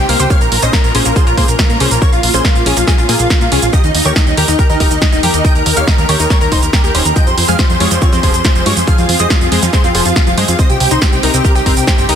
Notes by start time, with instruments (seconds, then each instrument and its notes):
Already playing: analog synth pad C3 C4 D#4 G4
0.09 analog synth bass C2, synth arpeggio sound A#3, supersaw synth C5 F5, digital synth lead F6, open hi-hat
0.20 analog synth bass C#2, supersaw synth G4, synth arpeggio sound C5, digital synth lead G5, closed hi-hat, shaker
0.30 synth arpeggio sound A#3, analog synth pad A#3 C#4 F4, supersaw synth C#5 F5, digital synth lead F6, kick, closed hi-hat, shaker
0.41 analog synth bass A#1, supersaw synth A#4, digital synth lead A#5, closed hi-hat, shaker
0.52 analog synth bass A#1, supersaw synth A#4, digital synth lead A#5, open hi-hat
0.62 analog synth bass A#1, synth arpeggio sound C#4, supersaw synth C5 D#5, digital synth lead D#6, closed hi-hat, shaker
0.73 supersaw synth A#4, synth arpeggio sound A#4, digital synth lead A#5, kick, snare, closed hi-hat, shaker
0.84 analog synth bass A#1, supersaw synth A#4, digital synth lead A#5, closed hi-hat, shaker
0.95 analog synth bass A#1, synth arpeggio sound C#4, supersaw synth G#4 C5, digital synth lead C6, open hi-hat
1.05 analog synth bass A#1, synth arpeggio sound A#3, supersaw synth A#4, digital synth lead A#5, closed hi-hat, shaker
1.16 synth arpeggio sound F4, supersaw synth G#4 C5, digital synth lead C6, kick, closed hi-hat, shaker
1.27 analog synth bass A#1, synth arpeggio sound F4, supersaw synth A#4, digital synth lead A#5, closed hi-hat, shaker
1.37 analog synth bass A#2, synth arpeggio sound A#3, supersaw synth G#4 C5, digital synth lead C6, kick, open hi-hat
1.48 analog synth bass A#1, supersaw synth A#4, digital synth lead A#5, closed hi-hat, shaker
1.59 supersaw synth A#4, synth arpeggio sound A#4, digital synth lead A#5, kick, snare, closed hi-hat, shaker
1.69 analog synth bass A#2, synth arpeggio sound A#3, supersaw synth A#4, digital synth lead A#5, closed hi-hat, shaker
1.80 analog synth bass C2, synth arpeggio sound C#4, supersaw synth G#4 C5, digital synth lead C6, open hi-hat
1.91 analog synth bass A#1, supersaw synth A#4, digital synth lead A#5, closed hi-hat, shaker
2.02 synth arpeggio sound A#3, supersaw synth A#4 C#5, digital synth lead C#6, kick, closed hi-hat, shaker
2.12 analog synth bass A#1, supersaw synth F4, digital synth lead F5, closed hi-hat, shaker
2.23 analog synth bass A#1, supersaw synth F4, digital synth lead F5, open hi-hat
2.34 analog synth bass A#1, synth arpeggio sound C#4, supersaw synth G#4 C5, digital synth lead C6, closed hi-hat, shaker
2.45 supersaw synth F4, synth arpeggio sound A#4, digital synth lead F5, kick, snare, closed hi-hat, shaker
2.55 analog synth bass A#1, supersaw synth F4, digital synth lead F5, closed hi-hat, shaker
2.66 analog synth bass A#1, synth arpeggio sound C#4, supersaw synth F4 G#4, digital synth lead G#5, open hi-hat
2.77 analog synth bass A#1, synth arpeggio sound A#3, supersaw synth F4, digital synth lead F5, closed hi-hat, shaker
2.87 supersaw synth F4 G#4, synth arpeggio sound F4, digital synth lead G#5, kick, snare, closed hi-hat, shaker
2.98 analog synth bass A#1, supersaw synth F4, synth arpeggio sound F4, digital synth lead F5, closed hi-hat, shaker
3.09 analog synth bass A#2, synth arpeggio sound A#3, supersaw synth F4 G#4, digital synth lead G#5, open hi-hat
3.19 analog synth bass A#1, supersaw synth F4, digital synth lead F5, closed hi-hat, shaker
3.30 supersaw synth F4, synth arpeggio sound A#4, kick, snare, closed hi-hat, shaker
3.41 analog synth bass A#2, synth arpeggio sound A#3, supersaw synth F4, digital synth lead F5, closed hi-hat, shaker
3.52 analog synth bass C2, synth arpeggio sound C#4, supersaw synth F4 G#4, digital synth lead G#5, open hi-hat
3.62 analog synth bass A#1, supersaw synth F4, digital synth lead F5, closed hi-hat, shaker
3.73 analog synth pad D#3 D#4 G4 A#4, synth arpeggio sound D#4, supersaw synth G4 D#5, digital synth lead D#6, kick, closed hi-hat, shaker
3.84 analog synth bass D#2, supersaw synth D#4, digital synth lead D#5, closed hi-hat, shaker
3.94 analog synth bass D#2, supersaw synth D#4, digital synth lead D#5, open hi-hat
4.05 analog synth bass D#2, synth arpeggio sound G4, supersaw synth A#4 C#5, digital synth lead C#6, closed hi-hat, shaker
4.16 supersaw synth D#4, digital synth lead D#5, synth arpeggio sound D#5, kick, snare, closed hi-hat, shaker
4.27 analog synth bass D#2, supersaw synth D#4, digital synth lead D#5, closed hi-hat, shaker
4.37 analog synth bass D#2, supersaw synth G4 A#4, synth arpeggio sound G4, digital synth lead A#5, open hi-hat
4.48 analog synth bass D#2, supersaw synth D#4, synth arpeggio sound D#4, digital synth lead D#5, closed hi-hat, shaker
4.59 supersaw synth G4 A#4, synth arpeggio sound A#4, digital synth lead A#5, kick, closed hi-hat, shaker
4.69 analog synth bass D#2, supersaw synth D#4, synth arpeggio sound A#4, digital synth lead D#5, closed hi-hat, shaker
4.80 analog synth bass D#1, synth arpeggio sound D#4, supersaw synth G4 A#4, digital synth lead A#5, kick, open hi-hat
4.91 analog synth bass D#2, supersaw synth D#4, digital synth lead D#5, closed hi-hat, shaker
5.02 supersaw synth D#4, digital synth lead D#5, synth arpeggio sound D#5, kick, snare, closed hi-hat, shaker
5.12 analog synth bass D#1, supersaw synth D#4, synth arpeggio sound D#4, digital synth lead D#5, closed hi-hat, shaker
5.23 analog synth bass F2, supersaw synth G4 A#4, synth arpeggio sound G4, digital synth lead A#5, open hi-hat
5.34 analog synth bass D#2, supersaw synth D#4, digital synth lead D#5, closed hi-hat, shaker
5.44 synth arpeggio sound D#4, supersaw synth D#5 G5, digital synth lead G6, kick, closed hi-hat, shaker
5.55 analog synth bass D#2, supersaw synth A#4, digital synth lead A#5, closed hi-hat, shaker
5.66 analog synth bass D#2, supersaw synth A#4, digital synth lead A#5, open hi-hat
5.77 analog synth bass D#2, synth arpeggio sound G4, supersaw synth C#5 F5, digital synth lead F6, closed hi-hat, shaker
5.87 supersaw synth A#4, synth arpeggio sound D#5, digital synth lead A#5, kick, snare, closed hi-hat, shaker
5.98 analog synth bass D#2, supersaw synth A#4, digital synth lead A#5, closed hi-hat, shaker
6.09 analog synth bass D#2, synth arpeggio sound G4, supersaw synth A#4 C#5, digital synth lead C#6, open hi-hat
6.20 analog synth bass D#2, synth arpeggio sound D#4, supersaw synth A#4, digital synth lead A#5, closed hi-hat, shaker
6.30 supersaw synth A#4 C#5, synth arpeggio sound A#4, digital synth lead C#6, kick, snare, closed hi-hat, shaker
6.41 analog synth bass D#2, supersaw synth A#4, synth arpeggio sound A#4, digital synth lead A#5, closed hi-hat, shaker
6.52 analog synth bass D#1, supersaw synth D#4 C5, synth arpeggio sound D#4, digital synth lead C6, kick, open hi-hat
6.62 analog synth bass D#2, supersaw synth A#4, digital synth lead A#5, closed hi-hat, shaker
6.73 synth arpeggio sound G4, supersaw synth A#4, digital synth lead A#5, kick, snare, closed hi-hat, shaker
6.84 analog synth bass D#2, synth arpeggio sound G4, supersaw synth A#4, digital synth lead A#5, closed hi-hat, shaker
6.95 analog synth bass D#1, synth arpeggio sound C#4, supersaw synth D#4 C5, digital synth lead C6, open hi-hat
7.05 analog synth bass D#2, supersaw synth A#4, digital synth lead A#5, closed hi-hat, shaker
7.16 analog synth pad F3 C4 G#4, synth arpeggio sound F3, supersaw synth D#5 G5, digital synth lead G6, kick, closed hi-hat, shaker
7.27 analog synth bass F2, supersaw synth C5, digital synth lead C6, closed hi-hat, shaker
7.37 analog synth bass F2, supersaw synth C5, digital synth lead C6, open hi-hat
7.48 analog synth bass F2, synth arpeggio sound G#3, supersaw synth G#4 F5, digital synth lead F6, closed hi-hat, shaker
7.59 synth arpeggio sound F4, supersaw synth C5, digital synth lead C6, kick, snare, closed hi-hat, shaker
7.70 analog synth bass F2, supersaw synth C5, digital synth lead C6, closed hi-hat, shaker
7.80 analog synth bass F2, synth arpeggio sound G#3, supersaw synth F4 C#5, digital synth lead C#6, open hi-hat
7.91 analog synth bass F2, synth arpeggio sound F3, supersaw synth C5, digital synth lead C6, closed hi-hat, shaker
8.02 synth arpeggio sound C4, supersaw synth F4 C#5, digital synth lead C#6, kick, closed hi-hat, shaker
8.13 analog synth bass F2, synth arpeggio sound C4, supersaw synth C5, digital synth lead C6, closed hi-hat, shaker
8.23 analog synth bass F1, synth arpeggio sound F3, supersaw synth G#4 C5, digital synth lead C6, kick, open hi-hat
8.34 analog synth bass F2, supersaw synth C5, digital synth lead C6, closed hi-hat, shaker
8.45 synth arpeggio sound F4, supersaw synth C5, digital synth lead C6, kick, snare, closed hi-hat, shaker
8.55 analog synth bass F1, synth arpeggio sound F3, supersaw synth C5, digital synth lead C6, closed hi-hat, shaker
8.66 analog synth bass G2, synth arpeggio sound G#3, supersaw synth F4 C#5, digital synth lead C#6, open hi-hat
8.77 analog synth bass F2, supersaw synth C5, digital synth lead C6, closed hi-hat, shaker
8.87 synth arpeggio sound F3, supersaw synth G#4 F5, digital synth lead F6, kick, closed hi-hat, shaker
8.98 analog synth bass F2, supersaw synth F4, digital synth lead F5, closed hi-hat, shaker
9.09 analog synth bass F2, supersaw synth F4, digital synth lead F5, open hi-hat
9.20 analog synth bass F2, synth arpeggio sound G#3, supersaw synth C5 D#5, digital synth lead D#6, shaker
9.30 supersaw synth F4, synth arpeggio sound F4, digital synth lead F5, kick, snare, closed hi-hat, shaker
9.41 analog synth bass F2, supersaw synth F4, digital synth lead F5, closed hi-hat, shaker
9.52 analog synth bass F2, synth arpeggio sound G#3, supersaw synth G#4 C5, digital synth lead C6, open hi-hat
9.62 analog synth bass F2, synth arpeggio sound F3, supersaw synth F4, digital synth lead F5, closed hi-hat, shaker
9.73 synth arpeggio sound C4, supersaw synth G#4 C5, digital synth lead C6, kick, snare, closed hi-hat, shaker
9.84 analog synth bass F2, synth arpeggio sound C4, supersaw synth F4, digital synth lead F5, closed hi-hat, shaker
9.95 analog synth bass F1, synth arpeggio sound F3, supersaw synth G#4 C5, digital synth lead C6, open hi-hat
10.05 analog synth bass F2, supersaw synth F4, digital synth lead F5, closed hi-hat, shaker
10.16 supersaw synth F4, synth arpeggio sound F4, digital synth lead F5, kick, snare, closed hi-hat, shaker
10.27 analog synth bass F1, synth arpeggio sound F3, supersaw synth F4, digital synth lead F5, closed hi-hat, shaker
10.37 analog synth bass G2, synth arpeggio sound G#3, supersaw synth G#4 C5, digital synth lead C6, open hi-hat
10.48 analog synth bass F2, supersaw synth F4, digital synth lead F5, closed hi-hat, shaker
10.59 analog synth pad C3 C4 D#4, synth arpeggio sound C4, supersaw synth C5 D#5, digital synth lead D#6, kick, closed hi-hat, shaker
10.70 analog synth bass C2, supersaw synth G4, digital synth lead G5, closed hi-hat, shaker
10.80 analog synth bass C2, supersaw synth G4, digital synth lead G5, open hi-hat
10.91 analog synth bass C2, supersaw synth D#4 C5, synth arpeggio sound D#4, digital synth lead C6, closed hi-hat, shaker
11.02 supersaw synth G4, synth arpeggio sound C5, digital synth lead G5, kick, snare, closed hi-hat, shaker
11.12 analog synth bass C2, supersaw synth G4, digital synth lead G5, closed hi-hat, shaker
11.23 analog synth bass C2, synth arpeggio sound D#4, supersaw synth G4 A#4, digital synth lead A#5, open hi-hat
11.34 analog synth bass C2, synth arpeggio sound C4, supersaw synth G4, digital synth lead G5, closed hi-hat, shaker
11.44 supersaw synth G4 A#4, synth arpeggio sound G4, digital synth lead A#5, kick, closed hi-hat, shaker
11.55 analog synth bass C2, supersaw synth G4, synth arpeggio sound G4, digital synth lead G5, closed hi-hat, shaker
11.66 analog synth bass G1, synth arpeggio sound C4, supersaw synth G4 A#4, digital synth lead A#5, kick, open hi-hat
11.77 analog synth bass C2, supersaw synth G4, digital synth lead G5, closed hi-hat, shaker
11.87 supersaw synth G4, synth arpeggio sound C5, kick, snare, closed hi-hat, shaker
11.98 analog synth bass G1, synth arpeggio sound C4, supersaw synth G4, digital synth lead G5, closed hi-hat, shaker
12.09 analog synth bass C#2, synth arpeggio sound D#4, supersaw synth G4 A#4, digital synth lead A#5, open hi-hat